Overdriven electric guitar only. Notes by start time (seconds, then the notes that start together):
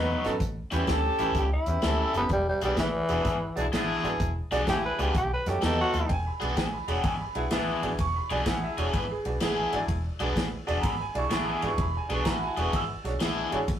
Already playing: B2 F#3 A3 D#4
0.71 A2 G3 C#4 E4
1.19 A2 G3 C#4 E4
1.82 A2 G3 C#4 E4
2.62 E3 B3 D4 G#4
3.10 E3 B3 D4 G#4
3.72 E3 B3 D4 G#4
4.51 E3 B3 D4 G#4
4.99 E3 B3 D4 G#4
5.62 B2 F#3 A3 D#4
6.40 E3 B3 D4 G#4
6.88 E3 B3 D4 G#4
7.51 E3 B3 D4 G#4
8.30 E3 B3 D4 G#4
8.78 E3 B3 D4 G#4
9.41 E3 B3 D4 G#4
10.20 E3 B3 D4 G#4
10.67 E3 B3 D4 G#4
11.30 E3 B3 D4 G#4
12.10 E3 B3 D4 G#4
12.57 E3 B3 D4 G#4
13.20 E3 B3 D4 G#4